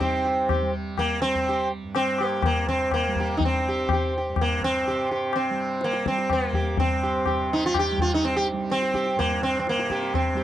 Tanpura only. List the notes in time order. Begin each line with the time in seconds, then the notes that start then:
Already playing: G2 G3
0.00 C3
0.62 G3
1.24 G3
1.84 G2
2.45 C3
3.08 G3
3.66 G3
4.29 G2
4.89 C3
5.50 G3
6.11 G3
6.72 G2
7.34 C3
7.92 G3
8.53 G3
9.15 G2
9.75 C3
10.34 G3